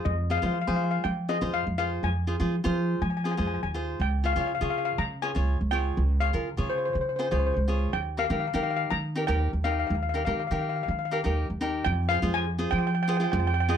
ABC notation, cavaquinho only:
X:1
M:4/4
L:1/16
Q:1/4=122
K:Fm
V:1 name="Cavaquinho"
z2 [FAc] [FAc] z [FAc]3 z2 [FAc] [FAc]2 z [FAc]2 | z2 [FAc] [FAc] z [FAc]3 z2 [FAc] [FAc]2 z [FAc]2 | z2 [FAd] [FAd] z [FAd]3 z2 [FAd] [FAd]2 z [FAd]2 | z2 [FAd] [FAB] z [FAd]3 z2 [FAc] [FAd]2 z [FAd]2 |
z2 [EGB] [EGB] z [EGB]3 z2 [EGB] [EGB]2 z [EGB]2 | z2 [EGB] [EGB] z [EGB]3 z2 [EGB] [EGB]2 z [EGB]2 | z2 [FAc] [FAc]2 z [FAc]2 z2 [FAc] [FAc]2 z2 [FAe] |]